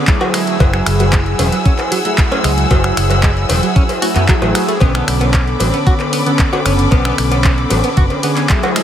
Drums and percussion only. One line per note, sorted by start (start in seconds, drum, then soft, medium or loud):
0.07 kick loud
0.07 clap loud
0.07 closed hi-hat medium
0.21 closed hi-hat soft
0.21 cowbell medium
0.34 finger snap medium
0.34 open hi-hat loud
0.34 ride medium
0.47 closed hi-hat medium
0.60 kick loud
0.60 closed hi-hat medium
0.60 cowbell medium
0.74 finger snap medium
0.74 closed hi-hat soft
0.86 finger snap medium
0.86 open hi-hat loud
0.86 ride medium
1.00 closed hi-hat medium
1.00 cowbell medium
1.13 kick loud
1.13 clap loud
1.13 closed hi-hat medium
1.26 closed hi-hat soft
1.39 open hi-hat loud
1.39 ride medium
1.39 cowbell loud
1.52 closed hi-hat medium
1.66 kick loud
1.66 closed hi-hat medium
1.79 clap soft
1.79 closed hi-hat soft
1.79 cowbell medium
1.92 open hi-hat loud
1.92 ride medium
2.05 closed hi-hat medium
2.18 kick loud
2.18 clap loud
2.18 closed hi-hat medium
2.32 closed hi-hat soft
2.32 cowbell loud
2.44 finger snap medium
2.44 open hi-hat loud
2.44 ride medium
2.58 closed hi-hat medium
2.71 kick loud
2.71 closed hi-hat soft
2.71 cowbell loud
2.84 finger snap medium
2.84 closed hi-hat soft
2.97 finger snap medium
2.97 open hi-hat loud
2.97 ride medium
3.10 closed hi-hat medium
3.10 cowbell medium
3.23 kick loud
3.23 clap loud
3.23 closed hi-hat medium
3.37 closed hi-hat soft
3.49 open hi-hat loud
3.49 ride medium
3.49 cowbell medium
3.63 closed hi-hat medium
3.76 kick loud
3.76 closed hi-hat soft
3.89 open hi-hat medium
3.89 cowbell medium
4.02 open hi-hat loud
4.02 ride medium
4.15 clap soft
4.15 closed hi-hat soft
4.28 kick loud
4.28 clap loud
4.28 closed hi-hat soft
4.42 closed hi-hat soft
4.42 cowbell loud
4.55 finger snap medium
4.55 open hi-hat loud
4.55 ride medium
4.69 closed hi-hat medium
4.80 kick loud
4.80 closed hi-hat medium
4.80 cowbell loud
4.95 finger snap medium
4.95 closed hi-hat soft
5.08 finger snap medium
5.08 open hi-hat loud
5.08 ride medium
5.21 closed hi-hat medium
5.21 cowbell medium
5.34 kick loud
5.34 clap loud
5.34 closed hi-hat medium
5.48 closed hi-hat soft
5.60 open hi-hat loud
5.60 ride medium
5.60 cowbell medium
5.74 closed hi-hat medium
5.87 kick loud
5.87 closed hi-hat soft
6.00 clap soft
6.00 closed hi-hat soft
6.00 cowbell medium
6.13 open hi-hat loud
6.13 ride medium
6.26 closed hi-hat medium
6.39 kick loud
6.39 clap loud
6.39 closed hi-hat medium
6.53 closed hi-hat soft
6.53 cowbell medium
6.66 finger snap medium
6.66 open hi-hat loud
6.66 ride medium
6.79 closed hi-hat soft
6.91 kick loud
6.91 closed hi-hat medium
6.91 cowbell medium
7.05 finger snap medium
7.05 closed hi-hat soft
7.18 finger snap medium
7.18 open hi-hat loud
7.18 ride medium
7.31 closed hi-hat medium
7.31 cowbell medium
7.44 kick loud
7.44 clap loud
7.44 closed hi-hat medium
7.58 closed hi-hat soft
7.70 open hi-hat loud
7.70 ride medium
7.70 cowbell medium
7.84 closed hi-hat medium
7.97 kick loud
7.97 closed hi-hat medium
8.10 closed hi-hat soft
8.10 cowbell medium
8.23 open hi-hat loud
8.23 ride medium
8.36 clap soft
8.36 closed hi-hat medium
8.49 kick loud
8.49 clap loud
8.49 closed hi-hat medium
8.63 closed hi-hat soft
8.63 cowbell medium
8.76 finger snap medium
8.76 open hi-hat loud
8.76 ride medium